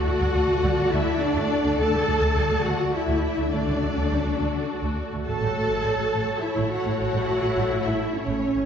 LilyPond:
<<
  \new Staff \with { instrumentName = "Violin section" } { \time 3/4 \key d \major \tempo 4 = 104 fis''4. e''8 d''4 | a''4. fis''8 e''4 | d''2 r4 | a''2 e''8 fis''8 |
fis''4. e''8 cis''4 | }
  \new Staff \with { instrumentName = "Violin section" } { \time 3/4 \key d \major <a' d''>2.~ | <a' d''>2. | <a' d''>2~ <a' d''>8 r8 | <a' cis''>2.~ |
<a' cis''>2. | }
  \new Staff \with { instrumentName = "Cello section" } { \time 3/4 \key d \major fis'4. e'8 d'4 | a'4. fis'8 e'4 | d'2 r4 | a'2 e'8 fis'8 |
fis'4. e'8 cis'4 | }
  \new Staff \with { instrumentName = "French horn section" } { \time 3/4 \key d \major fis'4. e'8 d'4 | a'4. fis'8 e'4 | d'2 r4 | a'2 e'8 fis'8 |
fis'4. e'8 cis'4 | }
  \new Staff \with { instrumentName = "Viola section" } { \time 3/4 \key d \major << { fis'2.~ | fis'2. | fis'2.~ | fis'2 e'4~ |
e'2. | } \\ { a16 g16 a16 a16 g16 a16 a16 r8 a16 r16 a16 | a16 g16 a16 a16 g16 a16 a16 r8 a16 r16 a16 | a16 g16 a16 a16 g16 a16 a16 r8 a16 r16 a16 | a16 g16 a16 a16 g16 a16 a16 r8 a16 r16 a16 |
a16 g16 a16 a16 g16 a16 a16 r8 a16 r16 a16 | } >> }
  \new Staff \with { instrumentName = "Double bass section" } { \clef bass \time 3/4 \key d \major d,16 d,16 d,16 d,16 d,16 d,16 d,16 r8 d,16 r16 d,16 | d,16 d,16 d,16 d,16 d,16 d,16 d,16 r8 d,16 r16 d,16 | d,16 d,16 d,16 d,16 d,16 d,16 d,16 r8 d,16 r16 d,16 | a,,16 a,,16 a,,16 a,,16 a,,16 a,,16 a,,16 r8 a,,16 r16 a,,16 |
a,,16 a,,16 a,,16 a,,16 a,,16 a,,16 a,,16 r8 a,,16 r16 a,,16 | }
>>